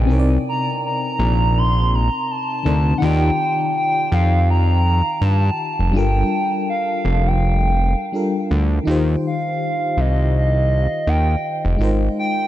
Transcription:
Already playing: analog synth bass A#1, fm electric piano C#3 C#4 E4 D#5
0.05 fm electric piano C3 C4 D#4
0.09 analog synth bass C2, fm electric piano A#4 C#5
0.19 fm electric piano D5
0.49 soft synth lead A#5
0.86 soft synth lead A#5
1.19 analog synth bass A#1
1.58 soft synth lead C6
1.95 soft synth lead A#5
2.31 soft synth lead A5
2.63 analog synth bass D2, fm electric piano C3 C4 D#4 A#4 D5
2.98 analog synth bass D#2, fm electric piano D#3 D#4 F4, soft synth lead F#5
3.04 fm electric piano G4 D5, soft synth lead G5
3.77 soft synth lead G5
4.12 analog synth bass F2, soft synth lead F5
4.50 soft synth lead A#5
5.21 analog synth bass G2, soft synth lead A5
5.79 analog synth bass F1
5.91 analog synth bass G1, fm electric piano G3 D4 F4
5.97 fm electric piano A4 A#4, soft synth lead G5
6.70 soft synth lead F5
7.05 analog synth bass F1
7.28 soft synth lead G5
8.12 fm electric piano G3 D4 F4 A4 A#4
8.51 analog synth bass D2
8.83 analog synth bass D#2, fm electric piano D#3 D#4 F4
8.89 fm electric piano G4 C5
9.27 soft synth lead F5
9.97 analog synth bass C2, soft synth lead D#5
10.37 soft synth lead D#5
11.07 analog synth bass D#2, soft synth lead G5
11.65 analog synth bass F1
11.77 analog synth bass G#1, fm electric piano G#3 D#4 F4
11.82 fm electric piano A#4 C5
12.19 soft synth lead G5

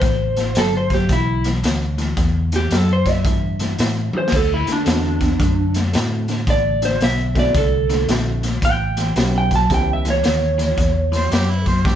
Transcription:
Already playing: clean electric guitar C5
0.01 fingered electric bass A1, overdriven electric guitar A2 E3, kick, snare, closed hi-hat
0.37 overdriven electric guitar A2 E3, snare, closed hi-hat
0.55 fingered electric bass G1, overdriven electric guitar A2 F#3, clean electric guitar A4, snare, closed hi-hat
0.77 clean electric guitar C5
0.90 overdriven electric guitar A2 F#3, kick, snare, closed hi-hat
0.94 clean electric guitar G4
1.09 fingered electric bass B1, overdriven electric guitar A2 E3, clean electric guitar E4, kick, snare, closed hi-hat
1.44 overdriven electric guitar A2 E3, snare, closed hi-hat
1.63 fingered electric bass D2, overdriven electric guitar A2 E3, snare, closed hi-hat
1.98 overdriven electric guitar A2 E3, snare, closed hi-hat
2.17 fingered electric bass E2, overdriven electric guitar A2 E3, kick, snare, closed hi-hat
2.52 overdriven electric guitar A2 E3, clean electric guitar G4, snare, closed hi-hat
2.71 fingered electric bass F#2, overdriven electric guitar A2 F#3, clean electric guitar A4, snare, closed hi-hat
2.93 clean electric guitar C5
3.06 overdriven electric guitar A2 F#3, kick, snare, closed hi-hat
3.11 clean electric guitar E5
3.25 fingered electric bass G2, overdriven electric guitar A2 E3, kick, snare, closed hi-hat
3.59 overdriven electric guitar A2 E3, snare, closed hi-hat
3.79 overdriven electric guitar A2 E3, fingered electric bass A2, snare, closed hi-hat
4.13 overdriven electric guitar A2 E3, muted fingered electric bass stroke, high tom
4.18 clean electric guitar C5
4.28 snare
4.32 fingered electric bass D2, overdriven electric guitar D3 A3, kick, snare, closed hi-hat, crash
4.36 clean electric guitar A4
4.54 clean electric guitar E4
4.67 overdriven electric guitar D3 A3, muted fingered electric bass stroke, snare, closed hi-hat
4.72 clean electric guitar D4
4.85 fingered electric bass E2, overdriven electric guitar D3 B3, upright piano A3 C4 E4 F#4, snare, closed hi-hat
5.21 overdriven electric guitar D3 B3, kick, snare, closed hi-hat
5.40 fingered electric bass F#2, overdriven electric guitar D3 A3, kick, snare, closed hi-hat
5.74 overdriven electric guitar D3 A3, snare, closed hi-hat
5.93 fingered electric bass A2, overdriven electric guitar D3 A3, upright piano A3 C4 E4 F#4, snare, closed hi-hat
6.28 overdriven electric guitar D3 A3, snare, closed hi-hat
6.47 fingered electric bass A1, overdriven electric guitar D3 A3, clean electric guitar D5, kick, snare, closed hi-hat
6.82 overdriven electric guitar D3 A3, clean electric guitar C5, snare, closed hi-hat
7.01 fingered electric bass B1, overdriven electric guitar D3 B3, clean electric guitar E5, snare, closed hi-hat
7.35 overdriven electric guitar D3 B3, upright piano A3 C4 E4 F#4, kick, snare, closed hi-hat
7.39 clean electric guitar D5
7.55 fingered electric bass C2, overdriven electric guitar D3 A3, clean electric guitar A4, kick, snare, closed hi-hat
7.89 overdriven electric guitar D3 A3, snare, closed hi-hat
8.08 fingered electric bass A#1, overdriven electric guitar D3 A3, upright piano A3 C4 E4 F#4, snare, closed hi-hat
8.43 overdriven electric guitar D3 A3, snare, closed hi-hat
8.62 fingered electric bass A1, overdriven electric guitar A2 E3, clean electric guitar G5, kick, snare, closed hi-hat
8.97 overdriven electric guitar A2 E3, snare, closed hi-hat
9.16 fingered electric bass B1, overdriven electric guitar A2 F#3, upright piano B3 C#4 E4 G4, snare, closed hi-hat
9.38 clean electric guitar G5
9.51 overdriven electric guitar A2 F#3, kick, snare, closed hi-hat
9.56 clean electric guitar A5
9.70 fingered electric bass C#2, overdriven electric guitar A2 E3, upright piano B3 C#4 E4 G4, kick, snare, closed hi-hat
9.74 clean electric guitar G5
9.93 clean electric guitar E5
10.05 overdriven electric guitar A2 E3, snare, closed hi-hat
10.10 clean electric guitar C#5
10.23 fingered electric bass D#2, overdriven electric guitar A2 E3, snare, closed hi-hat
10.58 overdriven electric guitar A2 E3, snare, closed hi-hat
10.77 fingered electric bass E2, overdriven electric guitar A2 E3, kick, snare, closed hi-hat
11.12 overdriven electric guitar A2 E3, harmonica C5, snare, closed hi-hat
11.31 fingered electric bass F#2, overdriven electric guitar A2 F#3, harmonica G4, snare, closed hi-hat
11.50 harmonica E4
11.66 overdriven electric guitar A2 F#3, harmonica C5, kick, snare, closed hi-hat
11.85 fingered electric bass G2, overdriven electric guitar A2 E3, harmonica G4, kick, snare

